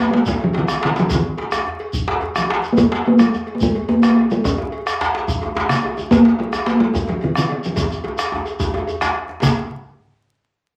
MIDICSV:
0, 0, Header, 1, 6, 480
1, 0, Start_track
1, 0, Key_signature, -5, "major"
1, 0, Tempo, 277649
1, 1900, Time_signature, 12, 3, 24, 8
1, 18609, End_track
2, 0, Start_track
2, 0, Title_t, "Talking drum"
2, 0, Program_c, 0, 116
2, 0, Note_on_c, 0, 58, 100
2, 186, Note_off_c, 0, 58, 0
2, 186, Note_on_c, 0, 58, 80
2, 229, Note_on_c, 0, 56, 85
2, 255, Note_off_c, 0, 58, 0
2, 461, Note_off_c, 0, 56, 0
2, 484, Note_on_c, 0, 56, 108
2, 694, Note_off_c, 0, 56, 0
2, 759, Note_on_c, 0, 53, 99
2, 999, Note_on_c, 0, 51, 91
2, 1025, Note_off_c, 0, 53, 0
2, 1449, Note_off_c, 0, 51, 0
2, 1467, Note_on_c, 0, 51, 86
2, 1638, Note_on_c, 0, 56, 66
2, 1664, Note_off_c, 0, 51, 0
2, 1721, Note_on_c, 0, 53, 103
2, 1747, Note_off_c, 0, 56, 0
2, 1979, Note_on_c, 0, 51, 94
2, 2005, Note_off_c, 0, 53, 0
2, 3386, Note_off_c, 0, 51, 0
2, 4114, Note_on_c, 0, 53, 94
2, 4710, Note_on_c, 0, 58, 81
2, 4736, Note_off_c, 0, 53, 0
2, 4802, Note_on_c, 0, 56, 105
2, 4828, Note_off_c, 0, 58, 0
2, 5315, Note_on_c, 0, 58, 97
2, 5340, Note_off_c, 0, 56, 0
2, 5538, Note_on_c, 0, 56, 105
2, 5564, Note_off_c, 0, 58, 0
2, 6126, Note_off_c, 0, 56, 0
2, 6136, Note_on_c, 0, 58, 75
2, 6272, Note_on_c, 0, 56, 110
2, 6298, Note_off_c, 0, 58, 0
2, 6721, Note_on_c, 0, 58, 110
2, 6747, Note_off_c, 0, 56, 0
2, 6959, Note_off_c, 0, 58, 0
2, 6989, Note_on_c, 0, 58, 110
2, 7462, Note_on_c, 0, 56, 103
2, 7487, Note_off_c, 0, 58, 0
2, 7691, Note_on_c, 0, 61, 117
2, 7717, Note_off_c, 0, 56, 0
2, 9605, Note_off_c, 0, 61, 0
2, 9840, Note_on_c, 0, 49, 101
2, 10562, Note_on_c, 0, 58, 113
2, 10588, Note_off_c, 0, 49, 0
2, 11059, Note_on_c, 0, 56, 108
2, 11085, Note_off_c, 0, 58, 0
2, 11513, Note_off_c, 0, 56, 0
2, 11523, Note_on_c, 0, 58, 101
2, 11761, Note_on_c, 0, 56, 90
2, 11787, Note_off_c, 0, 58, 0
2, 11998, Note_off_c, 0, 56, 0
2, 12010, Note_on_c, 0, 56, 99
2, 12261, Note_on_c, 0, 53, 93
2, 12287, Note_off_c, 0, 56, 0
2, 12516, Note_on_c, 0, 51, 91
2, 12542, Note_off_c, 0, 53, 0
2, 12734, Note_off_c, 0, 51, 0
2, 12762, Note_on_c, 0, 51, 96
2, 12962, Note_off_c, 0, 51, 0
2, 12999, Note_on_c, 0, 51, 91
2, 13241, Note_on_c, 0, 53, 98
2, 13267, Note_off_c, 0, 51, 0
2, 13459, Note_on_c, 0, 51, 83
2, 13485, Note_off_c, 0, 53, 0
2, 14880, Note_off_c, 0, 51, 0
2, 16293, Note_on_c, 0, 49, 93
2, 16518, Note_off_c, 0, 49, 0
2, 18609, End_track
3, 0, Start_track
3, 0, Title_t, "Bombo"
3, 475, Note_on_c, 9, 43, 102
3, 648, Note_off_c, 9, 43, 0
3, 1181, Note_on_c, 9, 37, 82
3, 1354, Note_off_c, 9, 37, 0
3, 1912, Note_on_c, 9, 43, 112
3, 2084, Note_off_c, 9, 43, 0
3, 2630, Note_on_c, 9, 37, 83
3, 2803, Note_off_c, 9, 37, 0
3, 3360, Note_on_c, 9, 43, 107
3, 3532, Note_off_c, 9, 43, 0
3, 3607, Note_on_c, 9, 37, 35
3, 3780, Note_off_c, 9, 37, 0
3, 4074, Note_on_c, 9, 37, 84
3, 4247, Note_off_c, 9, 37, 0
3, 4794, Note_on_c, 9, 43, 109
3, 4967, Note_off_c, 9, 43, 0
3, 5520, Note_on_c, 9, 37, 83
3, 5693, Note_off_c, 9, 37, 0
3, 6234, Note_on_c, 9, 43, 116
3, 6407, Note_off_c, 9, 43, 0
3, 6970, Note_on_c, 9, 37, 89
3, 7143, Note_off_c, 9, 37, 0
3, 7694, Note_on_c, 9, 43, 125
3, 7867, Note_off_c, 9, 43, 0
3, 8415, Note_on_c, 9, 37, 89
3, 8588, Note_off_c, 9, 37, 0
3, 9129, Note_on_c, 9, 43, 121
3, 9301, Note_off_c, 9, 43, 0
3, 9845, Note_on_c, 9, 37, 88
3, 10018, Note_off_c, 9, 37, 0
3, 10565, Note_on_c, 9, 43, 106
3, 10737, Note_off_c, 9, 43, 0
3, 11285, Note_on_c, 9, 37, 83
3, 11457, Note_off_c, 9, 37, 0
3, 12005, Note_on_c, 9, 43, 98
3, 12178, Note_off_c, 9, 43, 0
3, 12716, Note_on_c, 9, 37, 84
3, 12889, Note_off_c, 9, 37, 0
3, 13438, Note_on_c, 9, 37, 37
3, 13438, Note_on_c, 9, 43, 104
3, 13611, Note_off_c, 9, 37, 0
3, 13611, Note_off_c, 9, 43, 0
3, 13687, Note_on_c, 9, 37, 32
3, 13860, Note_off_c, 9, 37, 0
3, 14156, Note_on_c, 9, 37, 80
3, 14329, Note_off_c, 9, 37, 0
3, 14399, Note_on_c, 9, 37, 32
3, 14572, Note_off_c, 9, 37, 0
3, 14873, Note_on_c, 9, 43, 99
3, 15046, Note_off_c, 9, 43, 0
3, 15118, Note_on_c, 9, 37, 35
3, 15291, Note_off_c, 9, 37, 0
3, 15579, Note_on_c, 9, 37, 83
3, 15752, Note_off_c, 9, 37, 0
3, 16062, Note_on_c, 9, 37, 34
3, 16235, Note_off_c, 9, 37, 0
3, 16302, Note_on_c, 9, 43, 90
3, 16475, Note_off_c, 9, 43, 0
3, 18609, End_track
4, 0, Start_track
4, 0, Title_t, "Djembe"
4, 0, Note_on_c, 9, 63, 73
4, 165, Note_off_c, 9, 63, 0
4, 234, Note_on_c, 9, 62, 90
4, 406, Note_off_c, 9, 62, 0
4, 467, Note_on_c, 9, 64, 77
4, 477, Note_on_c, 9, 62, 90
4, 639, Note_off_c, 9, 64, 0
4, 650, Note_off_c, 9, 62, 0
4, 712, Note_on_c, 9, 62, 62
4, 885, Note_off_c, 9, 62, 0
4, 940, Note_on_c, 9, 62, 86
4, 946, Note_off_c, 9, 62, 0
4, 946, Note_on_c, 9, 62, 26
4, 946, Note_on_c, 9, 63, 81
4, 1119, Note_off_c, 9, 62, 0
4, 1119, Note_off_c, 9, 63, 0
4, 1182, Note_on_c, 9, 63, 87
4, 1355, Note_off_c, 9, 63, 0
4, 1429, Note_on_c, 9, 62, 119
4, 1601, Note_off_c, 9, 62, 0
4, 1659, Note_on_c, 9, 62, 87
4, 1670, Note_off_c, 9, 62, 0
4, 1670, Note_on_c, 9, 62, 57
4, 1843, Note_off_c, 9, 62, 0
4, 1907, Note_on_c, 9, 62, 85
4, 1912, Note_on_c, 9, 63, 79
4, 1912, Note_on_c, 9, 64, 74
4, 2080, Note_off_c, 9, 62, 0
4, 2085, Note_off_c, 9, 63, 0
4, 2085, Note_off_c, 9, 64, 0
4, 2389, Note_on_c, 9, 62, 79
4, 2562, Note_off_c, 9, 62, 0
4, 2634, Note_on_c, 9, 63, 89
4, 2635, Note_on_c, 9, 62, 59
4, 2807, Note_off_c, 9, 63, 0
4, 2808, Note_off_c, 9, 62, 0
4, 2864, Note_on_c, 9, 62, 22
4, 2864, Note_on_c, 9, 63, 75
4, 3037, Note_off_c, 9, 62, 0
4, 3037, Note_off_c, 9, 63, 0
4, 3357, Note_on_c, 9, 64, 79
4, 3530, Note_off_c, 9, 64, 0
4, 3586, Note_on_c, 9, 62, 66
4, 3592, Note_off_c, 9, 62, 0
4, 3592, Note_on_c, 9, 62, 109
4, 3765, Note_off_c, 9, 62, 0
4, 3814, Note_on_c, 9, 62, 25
4, 3814, Note_on_c, 9, 63, 89
4, 3987, Note_off_c, 9, 62, 0
4, 3987, Note_off_c, 9, 63, 0
4, 4075, Note_on_c, 9, 63, 86
4, 4247, Note_off_c, 9, 63, 0
4, 4309, Note_on_c, 9, 62, 25
4, 4327, Note_off_c, 9, 62, 0
4, 4327, Note_on_c, 9, 62, 122
4, 4500, Note_off_c, 9, 62, 0
4, 4538, Note_on_c, 9, 62, 63
4, 4711, Note_off_c, 9, 62, 0
4, 4788, Note_on_c, 9, 63, 84
4, 4788, Note_on_c, 9, 64, 84
4, 4802, Note_off_c, 9, 63, 0
4, 4802, Note_on_c, 9, 63, 92
4, 4961, Note_off_c, 9, 64, 0
4, 4975, Note_off_c, 9, 63, 0
4, 5043, Note_on_c, 9, 62, 116
4, 5216, Note_off_c, 9, 62, 0
4, 5518, Note_on_c, 9, 63, 94
4, 5529, Note_on_c, 9, 62, 68
4, 5691, Note_off_c, 9, 63, 0
4, 5702, Note_off_c, 9, 62, 0
4, 5770, Note_on_c, 9, 62, 25
4, 5770, Note_on_c, 9, 63, 85
4, 5943, Note_off_c, 9, 62, 0
4, 5943, Note_off_c, 9, 63, 0
4, 6263, Note_on_c, 9, 64, 88
4, 6435, Note_off_c, 9, 64, 0
4, 6498, Note_on_c, 9, 62, 74
4, 6671, Note_off_c, 9, 62, 0
4, 6733, Note_on_c, 9, 62, 31
4, 6733, Note_on_c, 9, 63, 95
4, 6906, Note_off_c, 9, 62, 0
4, 6906, Note_off_c, 9, 63, 0
4, 6956, Note_on_c, 9, 63, 85
4, 7129, Note_off_c, 9, 63, 0
4, 7217, Note_on_c, 9, 63, 86
4, 7390, Note_off_c, 9, 63, 0
4, 7447, Note_on_c, 9, 62, 69
4, 7620, Note_off_c, 9, 62, 0
4, 7688, Note_on_c, 9, 63, 84
4, 7692, Note_off_c, 9, 63, 0
4, 7692, Note_on_c, 9, 63, 95
4, 7692, Note_on_c, 9, 64, 98
4, 7865, Note_off_c, 9, 63, 0
4, 7865, Note_off_c, 9, 64, 0
4, 7921, Note_on_c, 9, 63, 90
4, 7964, Note_on_c, 9, 62, 30
4, 8094, Note_off_c, 9, 63, 0
4, 8136, Note_off_c, 9, 62, 0
4, 8431, Note_on_c, 9, 62, 72
4, 8604, Note_off_c, 9, 62, 0
4, 8661, Note_on_c, 9, 62, 112
4, 8663, Note_off_c, 9, 62, 0
4, 8663, Note_on_c, 9, 62, 29
4, 8663, Note_on_c, 9, 63, 87
4, 8836, Note_off_c, 9, 62, 0
4, 8836, Note_off_c, 9, 63, 0
4, 8900, Note_on_c, 9, 62, 87
4, 9073, Note_off_c, 9, 62, 0
4, 9132, Note_on_c, 9, 63, 87
4, 9150, Note_on_c, 9, 64, 88
4, 9305, Note_off_c, 9, 63, 0
4, 9323, Note_off_c, 9, 64, 0
4, 9384, Note_on_c, 9, 63, 89
4, 9394, Note_on_c, 9, 62, 79
4, 9557, Note_off_c, 9, 63, 0
4, 9567, Note_off_c, 9, 62, 0
4, 9600, Note_on_c, 9, 62, 28
4, 9600, Note_on_c, 9, 63, 95
4, 9624, Note_off_c, 9, 62, 0
4, 9624, Note_on_c, 9, 62, 111
4, 9773, Note_off_c, 9, 63, 0
4, 9797, Note_off_c, 9, 62, 0
4, 9850, Note_on_c, 9, 62, 81
4, 10023, Note_off_c, 9, 62, 0
4, 10085, Note_on_c, 9, 63, 94
4, 10257, Note_off_c, 9, 63, 0
4, 10322, Note_on_c, 9, 62, 68
4, 10331, Note_on_c, 9, 63, 81
4, 10495, Note_off_c, 9, 62, 0
4, 10504, Note_off_c, 9, 63, 0
4, 10559, Note_on_c, 9, 63, 89
4, 10559, Note_on_c, 9, 64, 87
4, 10585, Note_on_c, 9, 62, 109
4, 10732, Note_off_c, 9, 63, 0
4, 10732, Note_off_c, 9, 64, 0
4, 10758, Note_off_c, 9, 62, 0
4, 10804, Note_on_c, 9, 62, 92
4, 10977, Note_off_c, 9, 62, 0
4, 11040, Note_on_c, 9, 63, 88
4, 11213, Note_off_c, 9, 63, 0
4, 11283, Note_on_c, 9, 63, 95
4, 11288, Note_on_c, 9, 62, 72
4, 11456, Note_off_c, 9, 63, 0
4, 11461, Note_off_c, 9, 62, 0
4, 11518, Note_on_c, 9, 62, 101
4, 11534, Note_off_c, 9, 62, 0
4, 11534, Note_on_c, 9, 62, 27
4, 11707, Note_off_c, 9, 62, 0
4, 11758, Note_on_c, 9, 62, 79
4, 11931, Note_off_c, 9, 62, 0
4, 11991, Note_on_c, 9, 63, 90
4, 12005, Note_on_c, 9, 64, 87
4, 12164, Note_off_c, 9, 63, 0
4, 12178, Note_off_c, 9, 64, 0
4, 12232, Note_on_c, 9, 63, 83
4, 12252, Note_on_c, 9, 62, 72
4, 12404, Note_off_c, 9, 63, 0
4, 12425, Note_off_c, 9, 62, 0
4, 12490, Note_on_c, 9, 62, 29
4, 12490, Note_on_c, 9, 63, 101
4, 12663, Note_off_c, 9, 62, 0
4, 12663, Note_off_c, 9, 63, 0
4, 13215, Note_on_c, 9, 62, 67
4, 13387, Note_off_c, 9, 62, 0
4, 13426, Note_on_c, 9, 63, 112
4, 13450, Note_off_c, 9, 63, 0
4, 13450, Note_on_c, 9, 62, 28
4, 13450, Note_on_c, 9, 63, 89
4, 13450, Note_on_c, 9, 64, 87
4, 13623, Note_off_c, 9, 62, 0
4, 13623, Note_off_c, 9, 63, 0
4, 13623, Note_off_c, 9, 64, 0
4, 13686, Note_on_c, 9, 62, 31
4, 13859, Note_off_c, 9, 62, 0
4, 13903, Note_on_c, 9, 63, 97
4, 14076, Note_off_c, 9, 63, 0
4, 14162, Note_on_c, 9, 62, 67
4, 14335, Note_off_c, 9, 62, 0
4, 14386, Note_on_c, 9, 63, 115
4, 14411, Note_off_c, 9, 63, 0
4, 14411, Note_on_c, 9, 63, 86
4, 14584, Note_off_c, 9, 63, 0
4, 14863, Note_on_c, 9, 63, 117
4, 14891, Note_on_c, 9, 64, 88
4, 15036, Note_off_c, 9, 63, 0
4, 15064, Note_off_c, 9, 64, 0
4, 15112, Note_on_c, 9, 63, 111
4, 15118, Note_on_c, 9, 62, 74
4, 15285, Note_off_c, 9, 63, 0
4, 15291, Note_off_c, 9, 62, 0
4, 15366, Note_on_c, 9, 64, 50
4, 15538, Note_off_c, 9, 64, 0
4, 15591, Note_on_c, 9, 62, 113
4, 15599, Note_on_c, 9, 64, 54
4, 15764, Note_off_c, 9, 62, 0
4, 15772, Note_off_c, 9, 64, 0
4, 15834, Note_on_c, 9, 62, 62
4, 16007, Note_off_c, 9, 62, 0
4, 16064, Note_on_c, 9, 62, 71
4, 16237, Note_off_c, 9, 62, 0
4, 16303, Note_on_c, 9, 62, 118
4, 16314, Note_on_c, 9, 64, 90
4, 16476, Note_off_c, 9, 62, 0
4, 16487, Note_off_c, 9, 64, 0
4, 18609, End_track
5, 0, Start_track
5, 0, Title_t, "Shekere"
5, 447, Note_on_c, 9, 82, 70
5, 620, Note_off_c, 9, 82, 0
5, 1182, Note_on_c, 9, 82, 55
5, 1355, Note_off_c, 9, 82, 0
5, 1656, Note_on_c, 9, 82, 21
5, 1829, Note_off_c, 9, 82, 0
5, 1896, Note_on_c, 9, 82, 68
5, 2069, Note_off_c, 9, 82, 0
5, 2620, Note_on_c, 9, 82, 54
5, 2793, Note_off_c, 9, 82, 0
5, 3342, Note_on_c, 9, 82, 73
5, 3515, Note_off_c, 9, 82, 0
5, 4074, Note_on_c, 9, 82, 47
5, 4247, Note_off_c, 9, 82, 0
5, 4553, Note_on_c, 9, 82, 21
5, 4726, Note_off_c, 9, 82, 0
5, 4792, Note_on_c, 9, 82, 59
5, 4965, Note_off_c, 9, 82, 0
5, 5513, Note_on_c, 9, 82, 53
5, 5686, Note_off_c, 9, 82, 0
5, 5770, Note_on_c, 9, 82, 21
5, 5942, Note_off_c, 9, 82, 0
5, 6230, Note_on_c, 9, 82, 68
5, 6403, Note_off_c, 9, 82, 0
5, 6963, Note_on_c, 9, 82, 45
5, 7136, Note_off_c, 9, 82, 0
5, 7444, Note_on_c, 9, 82, 22
5, 7616, Note_off_c, 9, 82, 0
5, 7692, Note_on_c, 9, 82, 59
5, 7865, Note_off_c, 9, 82, 0
5, 8421, Note_on_c, 9, 82, 49
5, 8594, Note_off_c, 9, 82, 0
5, 8668, Note_on_c, 9, 82, 18
5, 8841, Note_off_c, 9, 82, 0
5, 9136, Note_on_c, 9, 82, 67
5, 9309, Note_off_c, 9, 82, 0
5, 9861, Note_on_c, 9, 82, 52
5, 10034, Note_off_c, 9, 82, 0
5, 10334, Note_on_c, 9, 82, 21
5, 10507, Note_off_c, 9, 82, 0
5, 10576, Note_on_c, 9, 82, 65
5, 10749, Note_off_c, 9, 82, 0
5, 11285, Note_on_c, 9, 82, 51
5, 11458, Note_off_c, 9, 82, 0
5, 11531, Note_on_c, 9, 82, 19
5, 11704, Note_off_c, 9, 82, 0
5, 12019, Note_on_c, 9, 82, 72
5, 12192, Note_off_c, 9, 82, 0
5, 12740, Note_on_c, 9, 82, 55
5, 12913, Note_off_c, 9, 82, 0
5, 13201, Note_on_c, 9, 82, 23
5, 13373, Note_off_c, 9, 82, 0
5, 13425, Note_on_c, 9, 82, 64
5, 13598, Note_off_c, 9, 82, 0
5, 13675, Note_on_c, 9, 82, 20
5, 13848, Note_off_c, 9, 82, 0
5, 14143, Note_on_c, 9, 82, 56
5, 14316, Note_off_c, 9, 82, 0
5, 14621, Note_on_c, 9, 82, 19
5, 14794, Note_off_c, 9, 82, 0
5, 14861, Note_on_c, 9, 82, 63
5, 15034, Note_off_c, 9, 82, 0
5, 15355, Note_on_c, 9, 82, 19
5, 15528, Note_off_c, 9, 82, 0
5, 15589, Note_on_c, 9, 82, 43
5, 15761, Note_off_c, 9, 82, 0
5, 16298, Note_on_c, 9, 82, 88
5, 16470, Note_off_c, 9, 82, 0
5, 18609, End_track
6, 0, Start_track
6, 0, Title_t, "Drums"
6, 690, Note_on_c, 9, 56, 52
6, 863, Note_off_c, 9, 56, 0
6, 919, Note_on_c, 9, 56, 59
6, 1092, Note_off_c, 9, 56, 0
6, 1407, Note_on_c, 9, 56, 60
6, 1580, Note_off_c, 9, 56, 0
6, 1891, Note_on_c, 9, 56, 76
6, 2064, Note_off_c, 9, 56, 0
6, 2376, Note_on_c, 9, 56, 52
6, 2549, Note_off_c, 9, 56, 0
6, 2629, Note_on_c, 9, 56, 53
6, 2802, Note_off_c, 9, 56, 0
6, 3110, Note_on_c, 9, 56, 56
6, 3283, Note_off_c, 9, 56, 0
6, 3592, Note_on_c, 9, 56, 53
6, 3764, Note_off_c, 9, 56, 0
6, 3818, Note_on_c, 9, 56, 55
6, 3991, Note_off_c, 9, 56, 0
6, 4316, Note_on_c, 9, 56, 57
6, 4489, Note_off_c, 9, 56, 0
6, 4792, Note_on_c, 9, 56, 70
6, 4965, Note_off_c, 9, 56, 0
6, 5278, Note_on_c, 9, 56, 52
6, 5451, Note_off_c, 9, 56, 0
6, 5528, Note_on_c, 9, 56, 60
6, 5701, Note_off_c, 9, 56, 0
6, 5995, Note_on_c, 9, 56, 58
6, 6168, Note_off_c, 9, 56, 0
6, 6484, Note_on_c, 9, 56, 55
6, 6657, Note_off_c, 9, 56, 0
6, 6714, Note_on_c, 9, 56, 51
6, 6887, Note_off_c, 9, 56, 0
6, 7182, Note_on_c, 9, 56, 63
6, 7355, Note_off_c, 9, 56, 0
6, 7679, Note_on_c, 9, 56, 66
6, 7852, Note_off_c, 9, 56, 0
6, 8161, Note_on_c, 9, 56, 57
6, 8334, Note_off_c, 9, 56, 0
6, 8403, Note_on_c, 9, 56, 54
6, 8576, Note_off_c, 9, 56, 0
6, 8896, Note_on_c, 9, 56, 56
6, 9069, Note_off_c, 9, 56, 0
6, 9364, Note_on_c, 9, 56, 55
6, 9537, Note_off_c, 9, 56, 0
6, 9613, Note_on_c, 9, 56, 52
6, 9786, Note_off_c, 9, 56, 0
6, 10090, Note_on_c, 9, 56, 58
6, 10263, Note_off_c, 9, 56, 0
6, 10569, Note_on_c, 9, 56, 66
6, 10742, Note_off_c, 9, 56, 0
6, 11041, Note_on_c, 9, 56, 52
6, 11214, Note_off_c, 9, 56, 0
6, 11294, Note_on_c, 9, 56, 53
6, 11466, Note_off_c, 9, 56, 0
6, 11772, Note_on_c, 9, 56, 50
6, 11945, Note_off_c, 9, 56, 0
6, 12249, Note_on_c, 9, 56, 52
6, 12422, Note_off_c, 9, 56, 0
6, 12465, Note_on_c, 9, 56, 49
6, 12638, Note_off_c, 9, 56, 0
6, 12953, Note_on_c, 9, 56, 57
6, 13126, Note_off_c, 9, 56, 0
6, 13415, Note_on_c, 9, 56, 74
6, 13588, Note_off_c, 9, 56, 0
6, 13894, Note_on_c, 9, 56, 54
6, 14067, Note_off_c, 9, 56, 0
6, 14139, Note_on_c, 9, 56, 58
6, 14312, Note_off_c, 9, 56, 0
6, 14616, Note_on_c, 9, 56, 51
6, 14789, Note_off_c, 9, 56, 0
6, 15104, Note_on_c, 9, 56, 54
6, 15277, Note_off_c, 9, 56, 0
6, 15341, Note_on_c, 9, 56, 53
6, 15514, Note_off_c, 9, 56, 0
6, 16283, Note_on_c, 9, 56, 84
6, 16456, Note_off_c, 9, 56, 0
6, 18609, End_track
0, 0, End_of_file